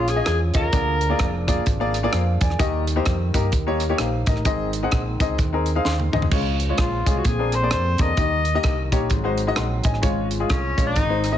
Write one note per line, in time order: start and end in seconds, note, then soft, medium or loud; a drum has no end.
0.00 0.20 A#1 medium
0.00 2.56 F3 medium
0.00 2.56 G#3 medium
0.00 0.71 C#4 medium
0.00 0.10 F4 medium
0.00 0.71 F4 medium
0.08 0.26 G#4 medium
0.08 cross-stick soft
0.08 closed hi-hat medium
0.15 0.34 C#4 medium
0.15 0.34 F4 medium
0.15 0.34 G#4 medium
0.15 0.34 D#5 medium
0.26 0.51 E2 medium
0.26 0.40 G#4 loud
0.26 cross-stick loud
0.26 closed hi-hat medium
0.54 0.70 D#2 medium
0.54 0.64 C#4 medium
0.54 0.64 F4 medium
0.54 0.64 G#4 medium
0.54 1.45 A#4 loud
0.54 0.64 D#5 medium
0.54 kick medium
0.54 closed hi-hat medium
0.72 1.13 D2 medium
0.72 1.44 D3 medium
0.72 0.95 A#3 medium
0.72 4.42 A#3 medium
0.72 2.58 D4 medium
0.72 0.95 F4 medium
0.72 0.96 G#4 medium
0.72 0.96 D5 medium
0.72 kick medium
0.72 closed hi-hat medium
1.01 closed hi-hat medium
1.09 1.27 A#3 medium
1.09 1.28 F4 medium
1.09 1.28 G#4 medium
1.09 1.28 D5 medium
1.19 1.60 F1 loud
1.19 kick medium
1.19 cross-stick loud
1.19 closed hi-hat medium
1.47 1.62 A#3 medium
1.47 1.62 F4 medium
1.47 1.63 G#4 medium
1.47 1.62 D5 medium
1.47 kick medium
1.47 closed hi-hat medium
1.66 2.06 G#1 medium
1.66 kick medium
1.66 closed hi-hat medium
1.80 1.95 A#3 medium
1.80 1.95 F4 medium
1.80 1.95 G#4 medium
1.80 1.95 D5 medium
1.94 cross-stick soft
1.94 closed hi-hat medium
2.03 2.21 A#3 medium
2.03 2.21 F4 medium
2.03 2.21 G#4 medium
2.03 2.13 D5 medium
2.13 2.37 F2 medium
2.13 cross-stick loud
2.13 closed hi-hat medium
2.41 2.57 E2 medium
2.41 2.86 D5 medium
2.41 2.85 G#5 medium
2.41 kick medium
2.41 closed hi-hat medium
2.50 cross-stick soft
2.59 2.99 D#2 loud
2.59 3.30 D#3 medium
2.59 6.28 D#3 medium
2.59 4.44 G3 medium
2.59 2.81 A#3 medium
2.59 2.82 D#4 medium
2.59 6.28 D#4 medium
2.59 2.82 G4 medium
2.59 2.82 D#5 medium
2.59 kick loud
2.59 closed hi-hat medium
2.87 closed hi-hat medium
2.96 3.14 A#3 medium
2.96 3.14 D#4 medium
2.96 3.14 G4 medium
2.96 3.14 C5 medium
3.06 3.30 F2 medium
3.06 kick medium
3.06 cross-stick medium
3.06 closed hi-hat medium
3.34 3.53 G2 medium
3.34 3.49 A#3 medium
3.34 3.49 D#4 medium
3.34 3.49 G4 medium
3.34 3.49 A#4 medium
3.34 kick medium
3.34 closed hi-hat medium
3.52 3.92 D#2 medium
3.52 kick medium
3.52 closed hi-hat medium
3.67 3.81 A#3 medium
3.67 3.81 D#4 medium
3.67 3.81 G4 medium
3.67 3.82 C#5 medium
3.80 cross-stick soft
3.80 closed hi-hat medium
3.89 4.07 A#3 medium
3.89 4.07 D#4 medium
3.89 4.07 G4 medium
3.89 3.99 C#5 medium
3.98 4.23 A#1 medium
3.98 4.26 C5 medium
3.98 cross-stick medium
3.98 closed hi-hat medium
4.26 4.43 A1 medium
4.26 4.72 A#4 soft
4.26 4.45 D#5 medium
4.26 kick medium
4.26 closed hi-hat medium
4.36 cross-stick soft
4.45 4.85 G#1 medium
4.45 5.16 G#2 medium
4.45 8.13 G#3 medium
4.45 4.68 C4 medium
4.45 6.30 C4 medium
4.45 4.68 D#4 medium
4.45 4.68 G#4 medium
4.45 4.68 D#5 medium
4.45 kick loud
4.45 closed hi-hat medium
4.73 closed hi-hat medium
4.83 5.00 C4 medium
4.83 5.00 D#4 medium
4.83 5.00 G#4 medium
4.83 5.01 F#5 medium
4.91 5.16 A#1 medium
4.91 kick medium
4.91 cross-stick loud
4.91 closed hi-hat medium
5.20 5.36 C#2 medium
5.20 5.35 C4 medium
5.20 5.35 D#4 medium
5.20 5.35 G#4 medium
5.20 5.35 D#5 medium
5.20 kick medium
5.20 closed hi-hat medium
5.38 5.78 D#2 medium
5.38 kick medium
5.38 closed hi-hat medium
5.53 5.67 C4 medium
5.53 5.67 D#4 medium
5.53 5.68 G#4 medium
5.53 5.68 A#4 medium
5.66 closed hi-hat medium
5.75 5.93 C4 medium
5.75 5.93 D#4 medium
5.75 5.93 G#4 medium
5.75 5.93 F5 medium
5.85 6.09 D#2 medium
5.85 6.11 C6 medium
5.85 snare soft
6.00 high tom soft
6.13 6.29 D2 medium
6.13 6.22 C4 medium
6.13 6.23 D#4 medium
6.13 6.23 G#4 medium
6.13 6.23 D#5 medium
6.13 mid tom medium
6.22 floor tom medium
6.31 6.71 C#2 medium
6.31 7.02 C#3 medium
6.31 7.23 F3 medium
6.31 6.54 G#3 medium
6.31 7.23 C#4 medium
6.31 6.54 C#4 medium
6.31 7.24 F4 medium
6.31 6.54 F4 medium
6.31 6.55 C#5 medium
6.31 kick loud
6.31 crash medium
6.60 closed hi-hat medium
6.69 6.86 G#3 medium
6.69 6.86 C#4 medium
6.69 6.87 F4 medium
6.69 6.87 C#5 medium
6.78 7.02 A#1 medium
6.78 7.19 F4 medium
6.78 kick medium
6.78 cross-stick medium
6.78 closed hi-hat medium
7.06 7.22 C2 medium
7.06 7.20 G#3 medium
7.06 7.21 C#4 medium
7.06 7.21 F4 medium
7.06 7.21 G#4 medium
7.06 kick medium
7.06 closed hi-hat medium
7.17 7.28 F#4 medium
7.25 7.74 A#1 medium
7.25 7.96 A#2 medium
7.25 8.17 D3 medium
7.25 9.09 A#3 soft
7.25 8.17 C4 medium
7.25 7.56 G#4 medium
7.25 kick medium
7.25 closed hi-hat medium
7.39 7.53 A#3 medium
7.39 7.53 D4 medium
7.39 7.54 G#4 medium
7.39 7.54 C5 medium
7.52 7.72 C5 medium
7.52 cross-stick soft
7.52 closed hi-hat medium
7.62 7.79 A#3 medium
7.62 7.79 D4 medium
7.62 7.80 G#4 medium
7.62 7.80 D5 medium
7.71 7.96 F2 medium
7.71 8.02 C5 medium
7.71 cross-stick loud
7.71 closed hi-hat medium
7.98 8.15 E2 medium
7.98 8.09 A#3 medium
7.98 8.09 D4 medium
7.98 8.09 G#4 medium
7.98 8.09 A#4 medium
7.98 8.93 D#5 loud
7.98 kick medium
7.98 closed hi-hat medium
8.17 8.57 D#2 medium
8.17 8.88 D#3 medium
8.17 9.10 D#3 medium
8.17 9.10 G3 medium
8.17 8.40 A#3 medium
8.17 8.40 D#4 medium
8.17 10.02 D#4 medium
8.17 8.40 G4 medium
8.17 8.40 D#5 medium
8.17 kick loud
8.17 closed hi-hat medium
8.45 closed hi-hat medium
8.55 8.72 A#3 medium
8.55 8.72 D#4 medium
8.55 8.72 G4 medium
8.55 8.72 D#5 loud
8.63 8.92 C2 medium
8.63 kick medium
8.63 cross-stick loud
8.63 closed hi-hat medium
8.92 9.08 A#1 medium
8.92 9.06 A#3 medium
8.92 9.06 D#4 medium
8.92 9.07 G4 medium
8.92 9.07 C#5 medium
8.92 kick medium
8.92 closed hi-hat medium
9.10 9.50 G#1 loud
9.10 9.81 G#2 medium
9.10 10.03 F#3 medium
9.10 11.38 G#3 medium
9.10 10.03 C4 medium
9.10 kick medium
9.10 closed hi-hat medium
9.24 9.39 G#3 medium
9.24 9.39 D#4 medium
9.24 9.39 F#4 medium
9.24 9.39 C5 medium
9.38 closed hi-hat medium
9.47 9.65 G#3 medium
9.47 9.65 D#4 medium
9.47 9.65 F#4 medium
9.47 9.57 D#5 medium
9.56 9.81 A#1 medium
9.56 9.84 F#5 medium
9.56 9.84 C6 medium
9.56 cross-stick loud
9.56 closed hi-hat medium
9.84 10.00 A1 medium
9.84 10.29 D#5 medium
9.84 10.29 G#5 medium
9.84 kick medium
9.84 closed hi-hat medium
9.94 cross-stick soft
10.02 10.43 G#1 medium
10.02 10.73 G#2 medium
10.02 10.96 F3 medium
10.02 10.25 G#3 medium
10.02 10.25 C#4 medium
10.02 10.96 C#4 medium
10.02 10.25 F4 medium
10.02 10.96 F4 medium
10.02 10.25 C#5 medium
10.02 kick medium
10.02 closed hi-hat medium
10.31 closed hi-hat medium
10.40 10.57 G#3 medium
10.40 10.57 C#4 medium
10.40 10.58 F4 medium
10.40 10.58 G#4 medium
10.50 10.74 C2 medium
10.50 10.84 C#4 medium
10.50 kick medium
10.50 cross-stick loud
10.50 closed hi-hat medium
10.77 10.93 A#1 medium
10.77 10.92 G#3 medium
10.77 10.92 C#4 medium
10.77 10.92 F4 medium
10.77 10.92 C#5 medium
10.77 kick medium
10.77 closed hi-hat medium
10.86 11.38 D#4 loud
10.96 11.36 G#1 loud
10.96 11.38 G#2 medium
10.96 11.38 D#3 medium
10.96 11.38 C4 medium
10.96 11.38 D#4 medium
10.96 kick medium
10.96 closed hi-hat medium
11.09 11.24 G#3 medium
11.09 11.24 C4 medium
11.09 11.25 D#4 medium
11.09 11.25 C5 medium
11.24 cross-stick soft
11.24 closed hi-hat medium
11.32 11.38 G#3 medium
11.32 11.38 C4 medium
11.32 11.38 D#4 medium
11.32 11.38 D#5 medium